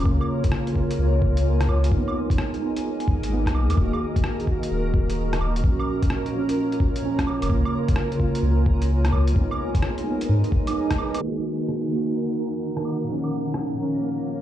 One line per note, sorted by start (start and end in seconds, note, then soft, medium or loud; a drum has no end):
0.00 0.71 C#3 medium
0.00 11.20 A#3 medium
0.00 1.88 A#4 medium
0.00 11.24 A#4 medium
0.00 1.87 C#5 medium
0.05 0.20 C#2 loud
0.05 0.74 A#3 medium
0.05 1.90 F4 medium
0.05 1.90 G#5 medium
0.05 kick loud
0.10 0.76 F4 loud
0.21 claves soft
0.44 kick loud
0.44 closed hi-hat medium
0.52 cross-stick loud
0.67 closed hi-hat soft
0.72 1.88 C#3 medium
0.72 1.90 A#3 medium
0.72 kick medium
0.80 1.92 F4 loud
0.91 closed hi-hat medium
0.99 1.67 C#2 medium
1.22 kick loud
1.37 closed hi-hat medium
1.61 cross-stick loud
1.61 closed hi-hat soft
1.69 1.91 C#2 medium
1.69 claves soft
1.84 closed hi-hat medium
1.88 2.06 G#1 medium
1.88 2.56 G#3 medium
1.88 2.60 D#4 medium
1.88 3.76 G#4 medium
1.88 5.60 D#5 medium
1.88 3.76 G#5 medium
1.88 kick loud
1.97 2.62 B3 medium
2.08 claves soft
2.30 kick loud
2.30 closed hi-hat medium
2.38 cross-stick loud
2.54 3.27 G#3 medium
2.54 closed hi-hat soft
2.61 3.29 D#4 medium
2.65 3.31 B3 medium
2.76 closed hi-hat medium
3.00 closed hi-hat soft
3.08 3.53 G#1 medium
3.08 kick loud
3.23 closed hi-hat medium
3.29 3.75 G#3 medium
3.29 3.77 B3 loud
3.29 3.76 D#4 medium
3.46 kick medium
3.46 cross-stick loud
3.46 closed hi-hat soft
3.54 3.68 B1 loud
3.54 claves soft
3.69 3.77 D#2 medium
3.69 4.43 D#3 medium
3.69 closed hi-hat medium
3.69 claves medium
3.77 3.92 D#1 medium
3.77 4.45 A#3 medium
3.77 5.62 F#4 medium
3.77 4.47 F#4 loud
3.77 9.32 A#4 medium
3.77 5.62 A#5 medium
3.77 kick loud
3.93 claves soft
4.16 kick loud
4.16 closed hi-hat soft
4.24 cross-stick loud
4.40 closed hi-hat soft
4.44 5.60 D#3 medium
4.44 5.62 A#3 medium
4.44 kick medium
4.51 5.64 F#4 loud
4.63 closed hi-hat medium
4.71 5.40 D#1 medium
4.94 kick loud
5.10 closed hi-hat soft
5.33 cross-stick loud
5.33 closed hi-hat soft
5.41 5.63 D#1 medium
5.41 claves soft
5.56 6.29 A#2 medium
5.56 closed hi-hat medium
5.64 5.78 A#1 loud
5.64 6.32 F3 medium
5.64 9.32 F4 medium
5.64 7.48 C#5 medium
5.64 7.48 A#5 medium
5.64 kick loud
5.68 6.34 C#4 medium
5.79 claves medium
6.03 kick loud
6.03 closed hi-hat soft
6.10 cross-stick loud
6.26 closed hi-hat soft
6.30 7.00 A#2 medium
6.34 7.02 F3 medium
6.34 7.04 C#4 medium
6.49 closed hi-hat medium
6.72 closed hi-hat soft
6.80 kick loud
6.96 closed hi-hat medium
7.01 7.47 A#2 medium
7.01 7.48 F3 medium
7.01 7.49 C#4 loud
7.19 kick medium
7.19 cross-stick loud
7.19 closed hi-hat soft
7.27 claves medium
7.42 7.49 F1 medium
7.42 8.14 C#3 medium
7.42 closed hi-hat medium
7.42 claves medium
7.49 7.64 C#2 loud
7.49 8.18 A#3 medium
7.49 9.35 C#5 medium
7.49 9.34 G#5 medium
7.49 kick loud
7.54 8.20 F4 loud
7.65 claves medium
7.88 kick loud
7.88 closed hi-hat medium
7.96 cross-stick loud
8.12 9.32 C#3 medium
8.12 closed hi-hat soft
8.20 9.34 A#3 medium
8.20 9.36 F4 loud
8.20 kick medium
8.35 closed hi-hat medium
8.42 9.11 C#2 medium
8.66 kick medium
8.82 closed hi-hat medium
9.05 cross-stick loud
9.05 closed hi-hat soft
9.12 9.35 C#2 medium
9.12 claves medium
9.27 closed hi-hat medium
9.32 9.50 G#1 loud
9.32 10.01 G#3 medium
9.32 11.20 D#4 medium
9.32 10.04 D#4 medium
9.32 11.20 G#4 medium
9.32 11.20 D#5 medium
9.32 11.20 G#5 medium
9.32 kick loud
9.40 10.06 B3 medium
9.51 claves medium
9.75 kick loud
9.75 closed hi-hat medium
9.82 cross-stick loud
9.98 closed hi-hat soft
10.03 10.63 G#3 medium
10.03 10.65 D#4 medium
10.11 10.67 B3 medium
10.21 closed hi-hat medium
10.29 10.43 G#2 medium
10.44 closed hi-hat soft
10.52 kick loud
10.65 10.96 G#3 medium
10.65 10.97 D#4 medium
10.65 closed hi-hat medium
10.65 claves medium
10.70 10.98 B3 medium
10.91 kick medium
10.91 cross-stick loud
10.91 closed hi-hat soft
10.98 11.20 G#3 medium
10.98 11.21 D#4 medium
10.98 11.22 B4 medium
10.98 claves medium
11.14 closed hi-hat medium
11.14 claves medium
11.19 11.87 D#3 medium
11.19 13.06 D#3 medium
11.19 14.41 A#3 medium
11.19 13.06 D#4 medium
11.19 13.06 A#4 medium
11.19 13.06 F#5 medium
11.19 14.41 A#5 medium
11.19 crash medium
11.23 11.90 A#3 medium
11.27 11.93 F#4 medium
11.37 claves soft
11.69 cross-stick medium
11.88 13.04 D#3 medium
11.92 13.06 A#3 medium
11.92 13.08 F#4 medium
12.77 cross-stick medium
12.85 claves soft
13.04 13.73 A#2 medium
13.04 13.76 F3 medium
13.08 14.41 A#2 medium
13.08 14.41 A#3 medium
13.08 14.41 C#5 medium
13.08 14.41 F5 medium
13.12 13.78 C#4 medium
13.24 claves soft
13.54 cross-stick loud
13.74 14.41 A#2 medium
13.78 14.41 F3 medium
13.78 14.41 C#4 medium